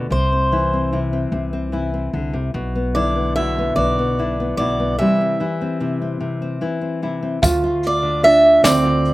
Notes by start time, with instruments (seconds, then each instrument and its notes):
Already playing: nylon-string guitar D2 D3, steel-string acoustic guitar D5
0.10 upright bass C2, nylon-string guitar C3, steel-string acoustic guitar C5
0.33 nylon-string guitar C4
0.52 nylon-string guitar E3 E4
0.73 nylon-string guitar C4
0.93 nylon-string guitar C3 E4
1.13 nylon-string guitar C4
1.32 upright bass C2, nylon-string guitar C3
1.53 nylon-string guitar C4
1.72 nylon-string guitar E3 E4
1.94 nylon-string guitar C4
2.13 upright bass C2, nylon-string guitar D3
2.33 nylon-string guitar C3
2.54 upright bass B1, nylon-string guitar B2
2.75 nylon-string guitar B3
2.95 nylon-string guitar D3 E4, steel-string acoustic guitar D5
3.16 nylon-string guitar B3
3.36 nylon-string guitar B2 E4, steel-string acoustic guitar E5
3.59 nylon-string guitar B3
3.76 upright bass B1, nylon-string guitar B2, steel-string acoustic guitar D5
3.99 nylon-string guitar B3
4.19 nylon-string guitar D3 E4
4.40 nylon-string guitar B3
4.57 upright bass B1, nylon-string guitar B2 E4, steel-string acoustic guitar D5
4.80 nylon-string guitar B3
4.99 nylon-string guitar C3 E3 G3 C4 E4, steel-string acoustic guitar E5
5.21 nylon-string guitar C4
5.40 nylon-string guitar E3 E4
5.61 nylon-string guitar C4
5.80 nylon-string guitar C3 E4
6.02 nylon-string guitar C4
6.20 nylon-string guitar C3
6.42 nylon-string guitar C4
6.61 nylon-string guitar E3 E4
6.81 nylon-string guitar C4
7.02 nylon-string guitar C3 E4
7.23 nylon-string guitar C4
7.42 nylon-string guitar D2 A3, upright bass D2, upright piano F4, kick, closed hi-hat, tambourine
7.64 nylon-string guitar F4
7.83 steel-string acoustic guitar D5, closed hi-hat
8.03 nylon-string guitar D3
8.23 upright piano D4, nylon-string guitar F4, steel-string acoustic guitar E5, closed hi-hat
8.63 nylon-string guitar D2 A3, upright bass D2, upright piano C4, steel-string acoustic guitar D5, snare, closed hi-hat, tambourine
8.83 nylon-string guitar F4
9.05 closed hi-hat